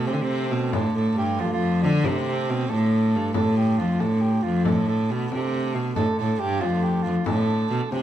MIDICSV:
0, 0, Header, 1, 5, 480
1, 0, Start_track
1, 0, Tempo, 435098
1, 811, Time_signature, 6, 3, 24, 8
1, 8852, End_track
2, 0, Start_track
2, 0, Title_t, "Soprano saxophone"
2, 0, Program_c, 0, 64
2, 74, Note_on_c, 0, 60, 78
2, 235, Note_off_c, 0, 60, 0
2, 249, Note_on_c, 0, 60, 77
2, 813, Note_on_c, 0, 69, 79
2, 829, Note_off_c, 0, 60, 0
2, 1052, Note_off_c, 0, 69, 0
2, 1066, Note_on_c, 0, 69, 79
2, 1282, Note_off_c, 0, 69, 0
2, 1307, Note_on_c, 0, 67, 85
2, 1540, Note_on_c, 0, 65, 76
2, 1556, Note_off_c, 0, 67, 0
2, 1673, Note_off_c, 0, 65, 0
2, 1679, Note_on_c, 0, 65, 74
2, 2013, Note_on_c, 0, 62, 67
2, 2029, Note_off_c, 0, 65, 0
2, 2276, Note_on_c, 0, 60, 79
2, 2293, Note_off_c, 0, 62, 0
2, 2976, Note_on_c, 0, 69, 84
2, 2992, Note_off_c, 0, 60, 0
2, 3675, Note_off_c, 0, 69, 0
2, 3681, Note_on_c, 0, 69, 81
2, 3910, Note_off_c, 0, 69, 0
2, 3938, Note_on_c, 0, 67, 70
2, 4171, Note_on_c, 0, 65, 76
2, 4188, Note_off_c, 0, 67, 0
2, 4416, Note_on_c, 0, 69, 76
2, 4432, Note_off_c, 0, 65, 0
2, 4650, Note_on_c, 0, 67, 67
2, 4667, Note_off_c, 0, 69, 0
2, 4881, Note_on_c, 0, 65, 71
2, 4898, Note_off_c, 0, 67, 0
2, 5113, Note_off_c, 0, 65, 0
2, 5120, Note_on_c, 0, 69, 76
2, 5349, Note_off_c, 0, 69, 0
2, 5391, Note_on_c, 0, 69, 77
2, 5638, Note_on_c, 0, 59, 66
2, 5655, Note_off_c, 0, 69, 0
2, 5873, Note_on_c, 0, 60, 55
2, 5890, Note_off_c, 0, 59, 0
2, 6288, Note_off_c, 0, 60, 0
2, 6573, Note_on_c, 0, 69, 84
2, 6796, Note_off_c, 0, 69, 0
2, 6823, Note_on_c, 0, 69, 77
2, 7057, Note_on_c, 0, 67, 84
2, 7074, Note_off_c, 0, 69, 0
2, 7286, Note_on_c, 0, 65, 83
2, 7302, Note_off_c, 0, 67, 0
2, 7533, Note_on_c, 0, 67, 74
2, 7550, Note_off_c, 0, 65, 0
2, 7752, Note_on_c, 0, 65, 73
2, 7769, Note_off_c, 0, 67, 0
2, 8002, Note_off_c, 0, 65, 0
2, 8014, Note_on_c, 0, 69, 83
2, 8725, Note_on_c, 0, 60, 69
2, 8742, Note_off_c, 0, 69, 0
2, 8852, Note_off_c, 0, 60, 0
2, 8852, End_track
3, 0, Start_track
3, 0, Title_t, "Hurdy-gurdy"
3, 0, Program_c, 1, 110
3, 0, Note_on_c, 1, 50, 61
3, 0, Note_on_c, 1, 57, 64
3, 5126, Note_off_c, 1, 57, 0
3, 5126, Note_on_c, 1, 57, 68
3, 5132, Note_off_c, 1, 50, 0
3, 5132, Note_on_c, 1, 50, 60
3, 8852, Note_off_c, 1, 50, 0
3, 8852, Note_off_c, 1, 57, 0
3, 8852, End_track
4, 0, Start_track
4, 0, Title_t, "Viola da gamba"
4, 0, Program_c, 2, 42
4, 81, Note_on_c, 2, 48, 83
4, 145, Note_on_c, 2, 50, 70
4, 162, Note_off_c, 2, 48, 0
4, 241, Note_on_c, 2, 48, 98
4, 257, Note_off_c, 2, 50, 0
4, 568, Note_on_c, 2, 47, 88
4, 585, Note_off_c, 2, 48, 0
4, 814, Note_on_c, 2, 45, 87
4, 831, Note_off_c, 2, 47, 0
4, 1032, Note_off_c, 2, 45, 0
4, 1039, Note_on_c, 2, 45, 82
4, 1268, Note_off_c, 2, 45, 0
4, 1292, Note_on_c, 2, 43, 85
4, 1541, Note_on_c, 2, 41, 77
4, 1557, Note_off_c, 2, 43, 0
4, 1600, Note_on_c, 2, 43, 69
4, 1616, Note_off_c, 2, 41, 0
4, 1690, Note_on_c, 2, 41, 89
4, 1707, Note_off_c, 2, 43, 0
4, 2031, Note_on_c, 2, 50, 95
4, 2047, Note_off_c, 2, 41, 0
4, 2258, Note_on_c, 2, 48, 93
4, 2275, Note_off_c, 2, 50, 0
4, 2754, Note_on_c, 2, 47, 92
4, 2771, Note_off_c, 2, 48, 0
4, 2983, Note_off_c, 2, 47, 0
4, 3001, Note_on_c, 2, 45, 87
4, 3481, Note_on_c, 2, 43, 84
4, 3497, Note_off_c, 2, 45, 0
4, 3707, Note_off_c, 2, 43, 0
4, 3721, Note_on_c, 2, 45, 94
4, 4194, Note_on_c, 2, 41, 84
4, 4210, Note_off_c, 2, 45, 0
4, 4425, Note_on_c, 2, 45, 82
4, 4441, Note_off_c, 2, 41, 0
4, 4899, Note_off_c, 2, 45, 0
4, 4914, Note_on_c, 2, 41, 82
4, 5159, Note_on_c, 2, 45, 84
4, 5175, Note_off_c, 2, 41, 0
4, 5637, Note_on_c, 2, 47, 92
4, 5654, Note_off_c, 2, 45, 0
4, 5865, Note_off_c, 2, 47, 0
4, 5887, Note_on_c, 2, 48, 88
4, 6336, Note_on_c, 2, 47, 83
4, 6353, Note_off_c, 2, 48, 0
4, 6574, Note_off_c, 2, 47, 0
4, 6584, Note_on_c, 2, 45, 80
4, 6690, Note_off_c, 2, 45, 0
4, 6835, Note_on_c, 2, 45, 77
4, 7048, Note_off_c, 2, 45, 0
4, 7084, Note_on_c, 2, 43, 84
4, 7320, Note_on_c, 2, 41, 79
4, 7336, Note_off_c, 2, 43, 0
4, 7781, Note_off_c, 2, 41, 0
4, 7788, Note_on_c, 2, 41, 76
4, 7892, Note_off_c, 2, 41, 0
4, 8010, Note_on_c, 2, 45, 82
4, 8457, Note_off_c, 2, 45, 0
4, 8499, Note_on_c, 2, 47, 91
4, 8606, Note_off_c, 2, 47, 0
4, 8738, Note_on_c, 2, 48, 85
4, 8852, Note_off_c, 2, 48, 0
4, 8852, End_track
5, 0, Start_track
5, 0, Title_t, "Frame drum"
5, 84, Note_on_c, 9, 64, 58
5, 195, Note_off_c, 9, 64, 0
5, 328, Note_on_c, 9, 64, 24
5, 438, Note_off_c, 9, 64, 0
5, 806, Note_on_c, 9, 64, 85
5, 917, Note_off_c, 9, 64, 0
5, 1529, Note_on_c, 9, 64, 61
5, 1639, Note_off_c, 9, 64, 0
5, 1770, Note_on_c, 9, 64, 25
5, 1880, Note_off_c, 9, 64, 0
5, 2248, Note_on_c, 9, 64, 81
5, 2358, Note_off_c, 9, 64, 0
5, 2972, Note_on_c, 9, 64, 62
5, 3083, Note_off_c, 9, 64, 0
5, 3211, Note_on_c, 9, 64, 23
5, 3322, Note_off_c, 9, 64, 0
5, 3688, Note_on_c, 9, 64, 83
5, 3798, Note_off_c, 9, 64, 0
5, 4162, Note_on_c, 9, 64, 25
5, 4273, Note_off_c, 9, 64, 0
5, 4415, Note_on_c, 9, 64, 61
5, 4525, Note_off_c, 9, 64, 0
5, 4657, Note_on_c, 9, 64, 26
5, 4767, Note_off_c, 9, 64, 0
5, 4901, Note_on_c, 9, 64, 25
5, 5012, Note_off_c, 9, 64, 0
5, 5134, Note_on_c, 9, 64, 79
5, 5244, Note_off_c, 9, 64, 0
5, 5866, Note_on_c, 9, 64, 62
5, 5976, Note_off_c, 9, 64, 0
5, 6105, Note_on_c, 9, 64, 25
5, 6216, Note_off_c, 9, 64, 0
5, 6577, Note_on_c, 9, 64, 83
5, 6688, Note_off_c, 9, 64, 0
5, 7295, Note_on_c, 9, 64, 61
5, 7406, Note_off_c, 9, 64, 0
5, 7538, Note_on_c, 9, 64, 25
5, 7649, Note_off_c, 9, 64, 0
5, 8010, Note_on_c, 9, 64, 81
5, 8120, Note_off_c, 9, 64, 0
5, 8740, Note_on_c, 9, 64, 63
5, 8850, Note_off_c, 9, 64, 0
5, 8852, End_track
0, 0, End_of_file